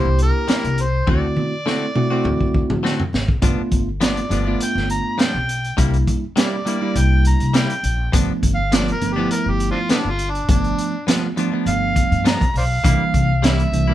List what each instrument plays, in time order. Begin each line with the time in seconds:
Already playing: tine electric piano A#3 D4 E4 G4, harmonica C5
0.05 upright bass C2
0.19 harmonica A#4, closed hi-hat
0.48 clean electric guitar C3 G3 A#3 E4, snare, closed hi-hat
0.64 upright bass C2, closed hi-hat
0.78 harmonica C5, closed hi-hat
1.07 upright bass D2, clean electric guitar D3 A3 C4 F#4, tine electric piano A3 C4 E4 F#4, harmonica D5, kick, high tom
1.36 high tom
1.66 clean electric guitar D3 A3 C4 F#4, tine electric piano A3 C4 E4 A4, snare
1.95 tine electric piano A3 C4 E4 F#4, mid tom
2.10 tine electric piano A3 C4 E4 F#4, clean electric guitar A3 C4 F#4
2.24 upright bass D2, mid tom
2.41 kick
2.54 kick
2.70 upright bass D3, mid tom
2.83 clean electric guitar D3 A3 C4 F#4, snare
3.00 floor tom
3.13 upright bass G#1, snare
3.28 kick
3.42 upright bass G1, clean electric guitar G2 F3 B3 D4, tine electric piano A3 B3 D4 F4, kick, closed hi-hat
3.57 muted upright bass stroke
3.71 upright bass G1, kick, closed hi-hat
4.00 clean electric guitar G2 F3 B3 D4, tine electric piano A3 B3 D4 F4, harmonica D5, snare, closed hi-hat
4.17 closed hi-hat
4.29 upright bass G1, clean electric guitar G2 F3 B3 D4, tine electric piano A3 B3 D4 F4, closed hi-hat
4.45 clean electric guitar F3 B3 D4, tine electric piano A3 B3 D4 F4
4.61 harmonica G5, closed hi-hat
4.75 upright bass G1, snare
4.90 harmonica A#5, closed hi-hat
5.18 clean electric guitar G2 F3 B3 D4, harmonica G5, snare, closed hi-hat
5.35 upright bass B1
5.49 closed hi-hat
5.64 closed hi-hat
5.77 upright bass C2, clean electric guitar C3 G3 A#3 E4, tine electric piano G3 A#3 D4 E4, kick, closed hi-hat
5.94 closed hi-hat
6.07 kick, closed hi-hat
6.36 clean electric guitar C3 G3 A#3 E4, tine electric piano G3 A#3 D4 G4, harmonica D5, snare, closed hi-hat
6.65 clean electric guitar C3 G3 A#3 E4, tine electric piano G3 A#3 D4 E4, closed hi-hat
6.81 tine electric piano G3 A#3 D4 E4, clean electric guitar G3 A#3 E4
6.95 upright bass C2, harmonica G5, closed hi-hat
7.25 harmonica A#5, closed hi-hat
7.40 upright bass C3, closed hi-hat
7.54 clean electric guitar C3 G3 A#3 E4, harmonica G5, snare, closed hi-hat
7.70 closed hi-hat
7.83 upright bass A#1, closed hi-hat
8.12 upright bass G1, clean electric guitar G2 F3 B3 D4, tine electric piano F3 A3 B3 D4, kick, closed hi-hat
8.29 muted upright bass stroke
8.42 upright bass G1, kick, closed hi-hat
8.54 harmonica F5
8.72 clean electric guitar G2 F3 B3 D4, tine electric piano F3 A3 B3 F4, harmonica D5, snare, closed hi-hat
8.88 closed hi-hat
8.92 harmonica A#4
9.01 upright bass G1, tine electric piano F3 A3 B3 D4, closed hi-hat
9.13 tine electric piano F3, clean electric guitar D4, harmonica G4
9.17 clean electric guitar F3 B3, tine electric piano A3 B3 E4
9.31 harmonica A#4, closed hi-hat
9.46 upright bass G1
9.50 harmonica G4
9.60 closed hi-hat
9.71 harmonica C4 D4 F4
9.89 clean electric guitar G2 F3 B3 D4, harmonica A3 B3 D4, snare, closed hi-hat
10.05 upright bass G1
10.10 harmonica F4
10.19 closed hi-hat
10.30 harmonica D4
10.35 closed hi-hat
10.48 upright bass G1, tine electric piano F3 A3 B3 D4, harmonica D4, kick, closed hi-hat
10.64 closed hi-hat
10.78 closed hi-hat
11.07 clean electric guitar G2 F3 B3 D4, tine electric piano F3 A3 B3 F4, snare, closed hi-hat
11.36 clean electric guitar G2 F3 B3 D4, tine electric piano F3 A3 B3 D4, closed hi-hat
11.52 tine electric piano F3 A3 B3 D4, clean electric guitar F3 B3 D4
11.66 upright bass G1, harmonica F5, closed hi-hat
11.96 kick, closed hi-hat
12.11 upright bass G2, closed hi-hat
12.24 clean electric guitar G2 F3 B3 D4, harmonica A#5, snare, closed hi-hat
12.41 kick, closed hi-hat
12.54 upright bass B1, harmonica C5 D5 F5, open hi-hat
12.84 upright bass C2, clean electric guitar C3 G3 A#3 E4, tine electric piano E3 G3 A#3 D4, kick, closed hi-hat
13.00 muted upright bass stroke
13.14 upright bass C2, kick, closed hi-hat
13.42 clean electric guitar C3 G3 A#3 E4, tine electric piano E3 G3 A#3 D4, harmonica E5, snare, closed hi-hat
13.59 closed hi-hat
13.72 upright bass C2, tine electric piano E3 G3 A#3 D4, closed hi-hat
13.88 tine electric piano E3 G3 A#3 D4, clean electric guitar G3 A#3 E4